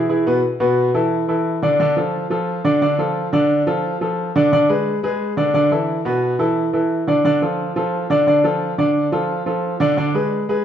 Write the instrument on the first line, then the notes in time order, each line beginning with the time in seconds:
grand piano
0.09 E3 E4 G#4
0.26 B2 B3 B4
0.60 B2 B3 B4
0.94 E3 E4 A4
1.28 E3 E4 A4
1.62 D3 D4 D5
1.80 D3 D4 D5
1.97 F3 F4 A4
2.30 F3 F4 A4
2.64 D3 D4 D5
2.82 D3 D4 D5
2.98 F3 F4 A4
3.33 D3 D4 D5
3.67 F3 F4 A4
4.01 F3 F4 A4
4.36 D3 D4 D5
4.52 D3 D4 D5
4.69 G#3 G#4 B4
5.03 G#3 G#4 B4
5.37 D3 D4 D5
5.54 D3 D4 D5
5.71 E3 E4 A4
6.05 B2 B3 B4
6.39 E3 E4 A4
6.73 E3 E4 A4
7.07 D3 D4 D5
7.25 D3 D4 D5
7.42 F3 F4 A4
7.76 F3 F4 A4
8.10 D3 D4 D5
8.27 D3 D4 D5
8.44 F3 F4 A4
8.78 D3 D4 D5
9.12 F3 F4 A4
9.46 F3 F4 A4
9.80 D3 D4 D5
9.97 D3 D4 D5
10.14 G#3 G#4 B4
10.49 G#3 G#4 B4